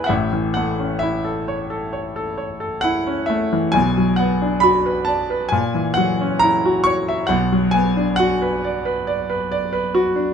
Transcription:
Already playing: G#2 G#3 B3 D4 E4 B4 D5 E5 F#5 G#5 B5
0.04 E5 F#5
0.09 A1 A2
0.33 E3
0.54 A3 F#5
0.80 C#4
0.99 E4 E5
1.24 A4
1.48 C#5
1.70 A4
1.93 C#5
2.16 A4
2.38 C#5
2.60 A4
2.81 E4 F#5
3.07 C#4
3.26 A3 E5
3.53 E3
3.72 B1 B2 G#5
3.97 F#3
4.16 B3 F#5
4.41 D4
4.60 F#4 B5
4.86 B4
5.05 D5 A5
5.30 B4
5.49 A#2 G#5
5.74 E3
5.94 F#3 F#5
6.21 C#4
6.39 E4 A#5
6.66 F#4
6.84 C#5 C#6
7.08 E5
7.27 B1 B2 F#5
7.52 F#3
7.71 B3 G#5
7.96 D4
8.16 F#4 F#5
8.42 B4
8.64 D5
8.85 B4
9.07 D5
9.29 B4
9.52 D5
9.73 B4
9.95 F#4
10.16 D4

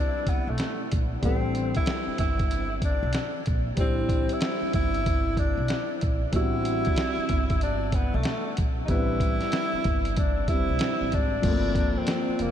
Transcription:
Already playing: G3 C4 D4 B4
0.27 B3, kick, closed hi-hat
0.47 B1 A3
0.58 snare, closed hi-hat
0.92 A#1, kick, closed hi-hat
1.21 A1 G3 C4 D4, kick, closed hi-hat
1.25 C4 A4
1.55 closed hi-hat
1.75 E4, kick, closed hi-hat
1.86 snare, closed hi-hat
2.07 muted upright bass stroke
2.18 G1 E4, kick, closed hi-hat
2.39 kick, closed hi-hat
2.51 closed hi-hat
2.82 D4, kick, closed hi-hat
3.03 B1
3.13 snare, closed hi-hat
3.46 A#1, kick, closed hi-hat
3.75 A1 G3 C4 D4, kick, closed hi-hat
3.80 C4 E4
4.09 kick, closed hi-hat
4.29 closed hi-hat
4.33 E4
4.41 snare, closed hi-hat
4.62 muted upright bass stroke
4.73 G1 E4, kick, closed hi-hat
4.94 closed hi-hat
5.06 kick, closed hi-hat
5.37 D4, kick, closed hi-hat
5.57 B1
5.68 snare, closed hi-hat
6.01 A#1, kick, closed hi-hat
6.32 A1 G3 B3 D4, kick, closed hi-hat
6.36 C4 E4 F#4
6.65 closed hi-hat
6.85 kick, closed hi-hat
6.96 snare, closed hi-hat
7.17 muted upright bass stroke
7.29 G1, kick, closed hi-hat
7.50 kick, closed hi-hat
7.61 D4, closed hi-hat
7.92 B3, kick, closed hi-hat
8.14 B1 A3
8.23 snare, closed hi-hat
8.57 A#1, kick, closed hi-hat
8.85 A1 G3 B3 D#4, kick, closed hi-hat
8.89 D4 E4 B4
8.95 C4
9.20 kick, closed hi-hat
9.41 snare, closed hi-hat
9.52 snare, closed hi-hat
9.73 muted upright bass stroke
9.84 G1, kick, closed hi-hat
10.05 closed hi-hat
10.17 D4, kick, closed hi-hat
10.47 G3 C4 D4 E4 B4, kick, closed hi-hat
10.56 C5
10.69 B1
10.79 snare, closed hi-hat
11.01 A1
11.12 G#1 D4, kick, closed hi-hat
11.42 G1 F3 A3 C4, kick, closed hi-hat, crash
11.46 A#3 A4
11.75 kick, closed hi-hat
11.98 C4
12.07 snare, closed hi-hat
12.29 muted upright bass stroke
12.39 F1 A#3, closed hi-hat

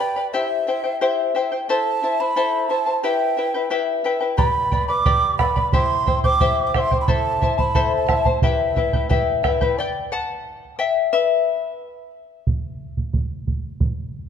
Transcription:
0.00 B4 D5 G5 B5
0.16 B4 D5 B5
0.32 E4 G4 C5 E5 G5
0.67 E4 C5 E5 G5
0.84 E4 C5 G5
1.01 E4 G4 C5 E5 G5
1.35 E4 C5 E5 G5
1.52 E4 C5 G5
1.69 E4 A4 C5 E5 A5
2.02 E4 C5 E5 A5
2.20 E4 C5 A5 B5
2.36 E4 A4 C5 E5 A5
2.69 E4 C5 E5 A5
2.86 E4 C5 A5
3.03 E4 G4 B4 E5 G5
3.37 E4 B4 E5 G5
3.54 E4 B4 G5
3.70 E4 G4 B4 E5 G5
4.04 E4 B4 E5 G5
4.20 E4 B4 G5
4.37 G4 B4 D5 G5 B5, bombo low
4.72 B4 D5 G5 B5, bombo low
4.88 B4 D5 B5 D6
5.06 G4 B4 D5 G5 B5, bombo low
5.38 B4 D5 G5 B5, bombo rim, bombo low
5.56 B4 D5 B5, bombo low
5.72 E4 G4 C5 E5 G5 C6, bombo low
6.06 E4 C5 E5 G5, bombo low
6.24 E4 C5 G5 D6, bombo low
6.40 E4 G4 C5 E5 G5, bombo low
6.67 D6
6.74 E4 C5 E5 G5 D6, bombo rim, bombo low
6.79 C6
6.91 E4 C5 G5, bombo low
7.01 B5
7.07 E4 A4 C5 E5 A5 B5, bombo low
7.41 E4 C5 E5 A5, bombo low
7.58 E4 C5 A5 B5, bombo low
7.75 E4 A4 C5 E5 A5, bombo low
7.97 A5
8.08 E4 C5 E5 A5, bombo rim, bombo low
8.25 E4 C5 A5, bombo low
8.42 E4 G4 B4 E5 G5, bombo low
8.76 E4 B4 E5 G5, bombo low
8.93 E4 B4 G5, bombo low
9.09 E4 G4 B4 E5 G5, bombo low
9.43 E4 B4 E5 G5, bombo rim, bombo low
9.61 E4 B4 G5, bombo low
9.79 D5 G5
10.12 F#5 A5
10.79 E5 G5
11.13 B4 E5
12.47 bombo low
12.97 bombo low
13.13 bombo low
13.47 bombo low
13.80 bombo low

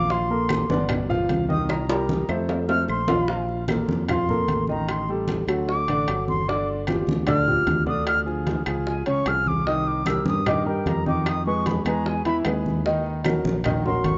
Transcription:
Already playing: A#1 D6
0.10 F3 F4 F5 C6, high bongo, high conga
0.30 A#3 A4 A#4, high bongo, high conga
0.49 high bongo, high conga, high timbale, claves
0.70 G1 B3 B4 D5, high bongo, high conga
0.89 high bongo, high conga, low conga, high timbale, claves
1.09 F3 F4 F5, high bongo, high conga, low conga
1.29 C2, high bongo, low bongo, high conga, high timbale
1.48 D#3 D#4 D#5 D#6, high conga
1.69 A#5, high bongo, high conga, high timbale, claves
1.89 G3 G4 A#4, high bongo, high conga, high timbale
2.09 high bongo, high conga
2.29 F2 A3 A4 C5, high conga, low timbale, claves
2.49 high bongo, high conga, low timbale
2.69 A3 A4 C5 F6, high bongo, high conga, low timbale
2.88 A#1 C6, low bongo, high conga, claves
3.08 F3 F4 F5, low bongo, high conga, low timbale
3.28 F3 F4 F5, high bongo, high conga
3.48 high bongo, high conga
3.68 A#3 A4 A#4, high bongo, high conga, high timbale, claves
3.88 F2, high bongo, high conga
4.08 F3 F4 F5 C6, high bongo, high conga, low conga, high timbale, claves
4.29 A#3 A4 A#4, high bongo, high conga, low conga
4.48 A1, high bongo, low bongo, high conga, high timbale
4.67 D#3 D#4 D#5 A#5, high conga
4.89 C6, high bongo, high conga, high timbale, claves
5.08 G3 G4 A4, high bongo, high conga
5.28 high bongo, high conga, high timbale
5.48 D2 F#3 F#4 A4, high bongo, high conga, high timbale, claves
5.68 D6, high bongo, high conga
5.88 A1 D3 D4 D5, high bongo, high conga, high timbale
6.07 G1 F#3 F#4 A4, high bongo, low bongo, high conga, high timbale, claves
6.28 C6, high conga
6.48 D3 D4 D5 D6, high bongo
6.68 high bongo, high conga
6.87 F3 F4 G4, high bongo, high conga, high timbale, claves
7.07 D2, high bongo, high conga
7.27 D3 D4 D5 F6, high bongo, high conga, low conga, high timbale, claves
7.47 F3 F4 G4, high bongo, high conga, low conga
7.67 D2, high bongo, low bongo, high conga, high timbale
7.86 D3 D4 D5 D#6, high conga
8.07 F6, high bongo, high timbale, claves
8.26 F3 F4 G#4, high bongo, high conga
8.47 high bongo, high conga, high timbale
8.66 C#2 F3 F4 G#4, high bongo, high conga, high timbale, claves
8.87 G#5, high bongo, high conga
9.06 C#2 C#3 C#4 C#5 C#6, high bongo, high conga, high timbale
9.26 C2 F3 F4 G#4 F6, high bongo, low bongo, high conga, high timbale, claves
9.46 D6, high conga
9.66 D#3 D#4 D#5 D#6, high bongo, high conga
9.86 D6, high bongo, high conga
10.06 G3 G4 A#4 E6, high bongo, high conga, high timbale, claves
10.25 G2 D#6, high bongo, high conga
10.46 D#3 D#4 D#5 D6, high bongo, high conga, low conga, high timbale, claves
10.66 G3 G4 A#4 G5, high bongo, high conga
10.86 F2 A#5, high bongo, low bongo, high conga, high timbale, low timbale
11.06 D#3 D#4 D#5 D6, high conga
11.26 D#6, high bongo, high conga, high timbale, claves
11.46 G#3 G#4 B4 C#6, high bongo, high conga
11.66 B5, high bongo, high conga, high timbale
11.85 E2 G#3 G#4 B4 A#5, high bongo, high conga, high timbale, claves
12.06 G#5, high bongo, high conga
12.25 E2 E3 E4 E5 B5, high conga, high timbale
12.45 D#2 G#3 G#4 B4, high bongo, low bongo, high conga, high timbale, low timbale, claves
12.66 high conga
12.86 D#3 D#4 D#5, high bongo, high conga
13.06 high bongo, high conga
13.24 F#3 F#4 A#4, high bongo, high conga, high timbale, claves
13.44 A#1, high bongo, high conga
13.64 D#3 D#4 D#5, high bongo, high conga, low conga, high timbale, claves
13.85 F#3 F#4 A#4 C6, high bongo, high conga, low conga
14.04 G#1 C#6, high bongo, low bongo, high conga, high timbale

